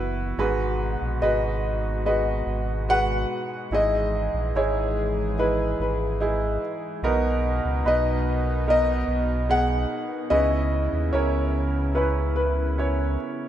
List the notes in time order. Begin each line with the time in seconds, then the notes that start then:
Already playing: F#1 E3 B3 E4 F#4 B4
0.38 G#1 G#2 B2 G#3 F#4 G#4 B4
1.02 A#1
1.22 G#1 F#4 G#4 B4 D#5
2.06 F#4 G#4 B4 D#5
2.46 G#1
2.89 F#4 G#4 B4 F#5
3.71 G#1 G#2 E3 D#4 E4 G#4 D#5
4.34 A#1
4.54 G#1 D#4 E4 G#4 C#5
5.39 D#4 E4 G#4 B4
5.79 G#1 B4
6.20 D#4 E4 G#4
7.02 B1 B2 B3 D#4 A#4
7.65 C#2
7.85 B1 B3 D#4 B4 D#5
8.67 B3 D#4 A#4 D#5
9.08 B1
9.49 B3 D#4 G#4 F#5
10.30 C#2 C#3 B3 C#4 E4 B4 D#5
10.93 D#2
11.13 C#2 C#4 E4 A#4 C#5
11.95 C#4 E4 B4
12.36 B4
12.78 C#4 E4 C#5